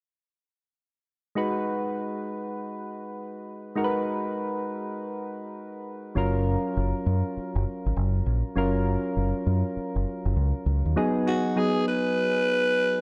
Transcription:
1.35 G#3 D#4 F#4 B4
3.75 G#3 D#4 F#4 A#4
3.84 B4
6.15 F#1 F#3 C#4 F4 A#4
6.77 F#1
7.06 F#2
7.37 muted fingered electric bass stroke
7.56 F#1
7.86 G#1
7.96 F#1
8.26 A#1
8.56 F#1 F#3 C#4 F4 A#4
9.17 F#1
9.47 F#2
9.77 muted fingered electric bass stroke
9.96 F#1
10.26 F#1
10.36 C#2
10.66 C#2
10.85 D#2
10.96 F#3 B3 D#4 G#4
11.26 F#3 B3 D#4 F#4 G#4
11.56 F#3 B3 D#4 G#4
11.88 B4

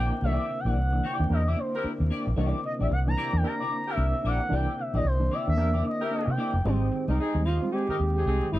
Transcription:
Already playing: D3 A#3 C4 D4 E4 G4 G5
0.00 D5
0.13 muted clean electric guitar stroke
0.22 C2 E3 A#3 D4 E4 G4 D5 E5
0.49 C3, muted clean electric guitar stroke
0.60 G5
0.65 A#1 E3 A#3 D4 E4 G4 D5 F#5
0.76 C2, muted clean electric guitar stroke
0.93 E3 A#3 D4, muted clean electric guitar stroke
1.03 C3 A#3 E4 G4 D5 G5
1.19 D#2 E3 A#3 D4, muted clean electric guitar stroke
1.29 E2 A#3 D4 E4 G4 A#4 D#5, muted clean electric guitar stroke
1.47 C3 A#3 E4 G4 D5 E5
1.57 A#3 D4 C5, muted clean electric guitar stroke
1.74 E4 G4 A#4, muted clean electric guitar stroke
1.84 A#3 D4, muted fingered electric bass stroke
2.00 D#2 C3, muted clean electric guitar stroke
2.10 A#3 D4 E4 G4 D5
2.27 A#1, muted clean electric guitar stroke
2.36 C2 E3 A#3 D4 E4 G4 D5
2.63 C3 D#5, muted clean electric guitar stroke
2.79 A#1 E3 A#3 D4 E4 G4 D5 E5
2.91 C2 F#5, muted clean electric guitar stroke
3.07 E3 A#3 D4 A#5, muted clean electric guitar stroke
3.17 C3 A#3 E4 G4 D5
3.33 E2 E3 A#3 D4, muted clean electric guitar stroke
3.37 G5
3.43 A#3 D4 E4 G4 A#4 A#5, muted clean electric guitar stroke
3.60 C3 A#3 E4 G4 D5
3.70 A#3 D4, muted clean electric guitar stroke
3.88 E4 G4 A#4 E5, muted clean electric guitar stroke
3.97 C2 A#3 D4
4.13 C3, muted clean electric guitar stroke
4.22 A#1 A#3 D4 E4
4.27 G4 D5 F#5
4.41 muted clean electric guitar stroke
4.49 C2 E3 A#3 D4 E4
4.53 G4 D5 G5
4.77 C3 E5, muted clean electric guitar stroke
4.93 A#1 E3 A#3 D4 E4 G4 D5 D#5
5.04 C2 C5, muted clean electric guitar stroke
5.20 E3 A#3 D4, muted clean electric guitar stroke
5.31 C3 A#3 E4 G4 D5 E5
5.47 D#2 E3 A#3 D4 E5, muted clean electric guitar stroke
5.57 E2 A#3 D4 E4 G4 A#4, muted clean electric guitar stroke
5.72 C3 A#3 E4 G4 D5
5.83 A#3 D4, muted clean electric guitar stroke
5.88 D#5
6.01 E4 G4 A#4 E5, muted clean electric guitar stroke
6.11 A#3 D4 D#5
6.27 C3 G5, muted clean electric guitar stroke
6.38 A#3 D4 E4 G4 D5
6.54 F1, muted clean electric guitar stroke
6.64 G#1 D#3 G3 G#3 C4 D#4 G4 C5 D#5
6.92 G#2 D#3, muted clean electric guitar stroke
7.08 C2 G3 G#3 C4 D#4 G4 A#4 C5 D#5
7.18 C4 D#4 G#4, muted clean electric guitar stroke, muted fingered electric bass stroke
7.34 D#2 G3 G#3 C4, muted clean electric guitar stroke
7.45 G#2 D#3 D#4 F4 G4 C5 D#5
7.62 G3 G#3 C4, muted clean electric guitar stroke
7.72 G#3 C4 D#4 G4 G#4, muted clean electric guitar stroke
7.89 G#2 D#3 D#4 G4 A#4 C5 D#5, muted fingered electric bass stroke
7.99 D#2 G#3 C4, muted clean electric guitar stroke
8.13 G4, muted clean electric guitar stroke
8.17 C4 D#4 G#4
8.26 C2 G#3 C4 D#4 G#4
8.43 G#2 D#3, muted clean electric guitar stroke
8.52 G1 G#3 C4 D#4 F4 G4 C5 D#5

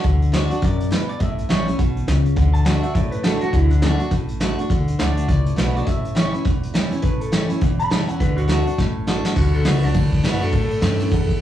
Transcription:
0.04 D2 D3, kick, closed hi-hat
0.22 closed hi-hat
0.32 D3 A3 D4 F#4 D5, snare, closed hi-hat
0.50 D4 F#4, closed hi-hat
0.62 A1 F#2 D5, kick, closed hi-hat
0.81 closed hi-hat
0.91 B2 B4, snare, closed hi-hat
1.09 D5, closed hi-hat
1.20 A1 A2 E5, kick, closed hi-hat
1.39 closed hi-hat
1.49 A1 E3 G3 C#4 E4 C#5, snare, closed hi-hat
1.66 C#4 E4, closed hi-hat
1.79 B1 B2, kick, closed hi-hat
1.97 closed hi-hat
2.07 C#2 C#3, snare, closed hi-hat
2.25 closed hi-hat
2.36 D2 D3, kick, closed hi-hat
2.54 A5, closed hi-hat
2.65 D3 A3 D4 F#4 F#5, snare, closed hi-hat
2.83 D4 F#4 E5, closed hi-hat
2.94 A1 A2 D5, kick, closed hi-hat
3.12 B4, closed hi-hat
3.23 D3 A3 D4 F#4 A4, snare, closed hi-hat
3.41 D4 F#4, closed hi-hat
3.52 D2 D3 E4, kick, closed hi-hat
3.71 D4, closed hi-hat
3.82 D3 A3 D4 F#4, snare, closed hi-hat
3.99 D4 F#4, closed hi-hat
4.11 A1 A2, kick, closed hi-hat
4.29 closed hi-hat
4.40 D3 A3 D4 F#4, snare, closed hi-hat
4.58 D4 F#4, closed hi-hat
4.70 D2 D3, kick, closed hi-hat
4.88 closed hi-hat
4.99 D2 D3 A3 D4 F#4 D5, snare, closed hi-hat
5.17 closed hi-hat
5.28 C#2 A2 D5, kick, closed hi-hat
5.46 closed hi-hat
5.56 B1 D3 A3 D4 F#4 B4, snare, closed hi-hat
5.75 D4 F#4 D5, closed hi-hat
5.87 A1 A2 E5, kick, closed hi-hat
6.05 closed hi-hat
6.15 E3 G3 C#4 E4 C#5, snare, closed hi-hat
6.33 C#4 E4, closed hi-hat
6.45 E1 E2, kick, closed hi-hat
6.63 closed hi-hat
6.74 E3 G3 C#4 E4, snare, closed hi-hat
6.91 C#4 E4, closed hi-hat
7.02 A1 A2 B4, kick, closed hi-hat
7.20 A4, closed hi-hat
7.32 E3 G3 C#4 E4, snare, closed hi-hat
7.49 C#4 E4, closed hi-hat
7.61 E1 E2, kick, closed hi-hat
7.80 B5, closed hi-hat
7.90 E3 G3 C#4 E4 A5, snare, closed hi-hat
8.08 C#4 E4 F#5, closed hi-hat
8.20 D2 D3 B4, kick, closed hi-hat
8.36 F#4, closed hi-hat
8.48 D3 A3 D4 F#4, snare, closed hi-hat
8.66 D4 F#4, closed hi-hat
8.78 A1 A2, kick, snare
9.07 D3 A3 D4 F#4, snare
9.25 D4 F#4, snare
9.36 D2 D3 F#4, kick, crash
9.53 A4, ride
9.65 C#2 D3 A3 D4 F#4 B4, snare, ride
9.83 D4 F#4 D5, ride
9.94 D2 A2, kick, ride
10.12 kick, ride
10.24 F#2 D3 A3 D4 F#4 B4, snare, ride
10.41 D4 F#4 A4, ride
10.53 A2 A4, kick, ride
10.71 ride
10.81 G2 E3 G3 C#4 E4, snare, ride
10.99 C#4 E4, ride
11.12 E2 F#2, kick, ride
11.29 kick, ride

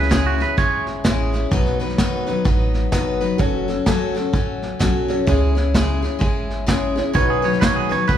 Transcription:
Already playing: C#2 E4 G#4 B4
0.02 snare
0.10 C#3 G#3 C#4 E4 G#4, kick, snare, hi-hat pedal
0.26 F#4
0.38 C#4 E4 G#4 B4, snare
0.57 G#1 G#3 C#4 E4 G#4 C#5, kick, snare
0.87 snare
1.04 A1 C#3 G#3 C#4 E4 G#4, kick, snare, hi-hat pedal
1.33 C#4 E4 G#4, snare
1.51 B1 B2 D#3 F#3 B3 D#4 B4, kick, snare
1.66 snare
1.80 F#3 B3 D#4 B4, snare
1.89 snare
1.98 B2 D#3 F#3 B3 D#4 B4, kick, snare, hi-hat pedal
2.27 F#3 B3 D#4 B4, snare
2.45 A1 F#3 B3 D#4 B4, kick, snare
2.74 snare
2.92 G#1 B2 D#3 F#3 B3 D#4 B4, kick, snare, hi-hat pedal
3.21 F#3 B3 D#4 B4, snare
3.37 F#1 F#3 C#4 F#4 A4 C#5, kick, snare
3.68 C#4 F#4 A4, snare
3.86 G#1 F#3 C#4 F#4 A4, kick, snare, hi-hat pedal
4.15 C#4 F#4 A4, snare
4.33 A1 F#3 C#4 F#4 A4, kick, snare
4.62 snare
4.79 B1 F#3 C#4 F#4 A4, kick, snare, hi-hat pedal
5.08 C#4 F#4 A4 C#5, snare
5.26 C#2 C#3 G#3 C#4 E4 G#4 C#5, kick, snare
5.55 C#4 E4 G#4, snare
5.74 C#3 G#3 C#4 E4 G#4, kick, snare, hi-hat pedal
6.02 C#4 E4 G#4, snare
6.19 G#1 G#3 C#4 E4 G#4, kick, snare
6.50 snare
6.66 C#3 G#3 C#4 E4 G#4, kick, snare, hi-hat pedal
6.96 C#4 E4 G#4 C#5, snare
7.13 B1 B2 D#3 F#3 B3 D#4 F#4 B4 C#5, kick, snare
7.30 G#4
7.42 F#3 B3 D#4 B4 C#5, snare
7.53 snare
7.61 B2 D#3 F#3 B3 D#4 B4 C#5, kick, snare, hi-hat pedal
7.76 G#4
7.89 F#3 B3 D#4 B4 C#5, snare
8.08 F#1 F#3 B3 D#4 B4, kick, snare

